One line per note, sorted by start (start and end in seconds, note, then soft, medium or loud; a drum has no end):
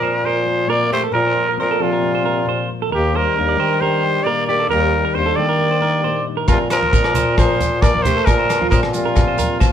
0.00 0.66 A#2 medium
0.00 0.88 A#2 medium
0.00 0.24 F3 medium
0.00 1.78 F3 medium
0.00 1.11 C4 medium
0.00 0.27 A#4 medium
0.00 0.23 C5 medium
0.23 0.70 F3 medium
0.23 0.46 A#4 medium
0.23 0.71 C5 medium
0.23 muted nylon-string guitar stroke medium
0.46 0.89 F4 medium
0.67 1.10 A#2 medium
0.67 0.91 A#3 medium
0.67 1.60 A#4 medium
0.67 0.90 A#4 medium
0.67 0.91 D5 medium
0.90 1.02 A3 medium
0.90 1.10 F4 medium
0.90 1.02 G4 medium
0.90 1.02 C5 medium
1.04 1.13 A4 medium
1.11 2.45 A#2 medium
1.11 1.48 A#2 loud
1.11 1.55 F3 medium
1.11 1.34 F4 medium
1.11 1.54 A#4 loud
1.11 1.25 A#4 medium
1.27 1.47 C5 medium
1.49 1.58 A#4 medium
1.57 1.75 A#2 medium
1.57 1.82 F3 medium
1.57 1.79 C4 medium
1.57 1.83 A#4 medium
1.57 1.70 C5 medium
1.71 1.91 A4 medium
1.79 2.67 A#2 medium
1.79 2.69 C3 medium
1.79 2.92 F3 medium
1.79 2.01 C4 medium
1.79 2.70 F4 medium
1.93 2.13 A#4 medium
2.02 2.22 C4 medium
2.15 2.25 C5 medium
2.24 2.45 C4 medium
2.24 2.46 A#4 medium
2.46 2.89 A#2 medium
2.46 2.89 C4 medium
2.46 2.69 C5 medium
2.69 2.89 F4 medium
2.82 2.92 A4 medium
2.89 3.27 D#2 medium
2.89 4.66 D#3 medium
2.89 3.13 D#4 medium
2.89 3.13 A#4 medium
2.94 3.19 D#3 medium
2.94 3.18 G4 medium
3.13 3.82 G3 medium
3.13 3.57 D#4 medium
3.13 3.82 A#4 medium
3.13 3.36 C5 medium
3.36 3.54 D#2 medium
3.36 4.67 D4 medium
3.36 3.48 A#4 medium
3.49 3.59 D5 medium
3.56 4.25 D#3 medium
3.56 4.66 G3 medium
3.56 4.02 D#4 medium
3.56 3.80 C5 medium
3.81 4.29 G3 medium
3.81 4.24 G4 medium
3.81 4.03 A#4 medium
3.81 4.25 C5 medium
4.03 4.47 D#4 medium
4.24 4.67 A#2 medium
4.24 4.69 G4 medium
4.24 4.47 A#4 medium
4.24 4.47 D5 loud
4.28 4.49 A#3 medium
4.47 4.70 A#3 medium
4.47 4.68 D#4 medium
4.47 4.59 G4 medium
4.47 4.68 D5 medium
4.59 4.70 A4 medium
4.69 5.05 D#2 medium
4.69 6.46 D#3 medium
4.69 5.15 G3 medium
4.69 5.58 G4 medium
4.69 5.16 A#4 loud
4.69 4.81 A#4 medium
4.83 muted clean electric guitar stroke medium
4.92 5.36 D#4 medium
5.05 5.15 A#4 medium
5.14 5.32 D#2 medium
5.14 5.40 G3 medium
5.14 6.46 D4 medium
5.14 5.37 C5 medium
5.14 5.26 C5 medium
5.26 5.47 A4 medium
5.36 6.25 D#3 medium
5.36 6.46 G3 medium
5.36 6.27 A#3 medium
5.36 5.79 D#4 medium
5.36 6.26 D5 medium
5.49 5.70 A#4 medium
5.59 6.02 G4 medium
5.71 5.81 C5 medium
5.81 6.25 D#4 medium
5.81 6.03 A#4 medium
6.03 6.46 A#2 medium
6.03 6.49 G4 medium
6.03 6.25 C5 medium
6.26 6.46 D#4 medium
6.37 6.47 A#4 medium
6.48 7.81 A#2 medium
6.48 6.84 A#2 medium
6.48 6.61 C3 medium
6.48 7.15 F3 medium
6.48 6.92 C4 medium
6.48 6.59 F4 medium
6.48 6.70 A#4 medium
6.48 kick medium
6.48 cross-stick medium
6.48 low agogo medium
6.48 shekere medium
6.70 7.35 F3 medium
6.70 7.34 A#4 loud
6.70 6.92 C5 medium
6.70 cross-stick medium
6.70 closed hi-hat soft
6.70 low agogo medium
6.70 shekere medium
6.83 high conga medium
6.93 7.11 A#2 medium
6.93 8.24 C4 medium
6.93 7.04 A#4 medium
6.93 kick medium
6.93 shekere medium
7.04 7.15 D5 medium
7.04 cross-stick medium
7.04 low agogo medium
7.14 8.03 A#2 medium
7.14 8.93 F3 medium
7.14 7.60 F4 medium
7.14 7.37 C5 medium
7.14 closed hi-hat medium
7.14 low conga medium
7.14 shekere medium
7.37 7.84 F3 medium
7.37 7.59 A#4 medium
7.37 7.82 A#4 medium
7.37 7.83 C5 medium
7.37 kick medium
7.37 cross-stick medium
7.37 low agogo medium
7.37 shekere medium
7.60 8.04 F4 medium
7.60 closed hi-hat soft
7.60 high conga medium
7.60 low conga medium
7.60 shekere medium
7.81 8.24 A#2 medium
7.81 8.08 A#3 medium
7.81 8.77 A#4 medium
7.81 8.04 A#4 medium
7.81 8.04 D5 loud
7.81 kick medium
7.81 cross-stick medium
7.81 low agogo medium
7.81 shekere medium
7.94 high conga medium
8.02 8.18 D4 medium
8.02 8.16 G4 medium
8.02 8.27 C5 loud
8.02 closed hi-hat medium
8.02 high conga medium
8.02 low conga medium
8.02 shekere medium
8.06 8.29 A3 medium
8.17 8.27 F4 medium
8.17 8.27 A4 medium
8.25 8.62 A#2 medium
8.25 9.60 A#2 medium
8.25 8.71 F3 medium
8.25 8.70 A#4 loud
8.25 8.38 A#4 medium
8.25 muted nylon-string guitar stroke medium
8.25 kick medium
8.25 cross-stick medium
8.25 low agogo medium
8.25 shekere medium
8.39 8.60 C5 medium
8.49 9.72 F4 medium
8.49 cross-stick medium
8.49 closed hi-hat soft
8.49 low agogo medium
8.49 shekere medium
8.61 8.72 F4 medium
8.61 high conga medium
8.70 8.90 A#2 medium
8.70 8.82 F3 medium
8.70 8.94 C4 medium
8.70 8.81 A#4 medium
8.70 8.83 C5 medium
8.70 kick medium
8.70 shekere medium
8.83 muted clean electric guitar stroke medium
8.83 cross-stick medium
8.83 low agogo medium
8.93 9.61 A#2 medium
8.93 9.72 C3 medium
8.93 9.72 F3 medium
8.93 9.07 A#3 medium
8.93 9.72 F4 medium
8.93 closed hi-hat soft
8.93 shekere medium
9.05 9.17 C4 soft
9.05 9.27 A#4 medium
9.15 9.39 C4 medium
9.15 kick medium
9.15 cross-stick medium
9.15 low agogo medium
9.15 shekere medium
9.28 9.38 C5 medium
9.38 9.61 C4 medium
9.38 9.60 A#4 medium
9.38 closed hi-hat soft
9.38 high conga medium
9.38 low conga medium
9.38 shekere medium
9.60 9.72 A#2 medium
9.60 9.72 C4 medium
9.60 9.72 C5 medium
9.60 kick medium
9.60 cross-stick medium
9.60 low agogo medium
9.60 shekere medium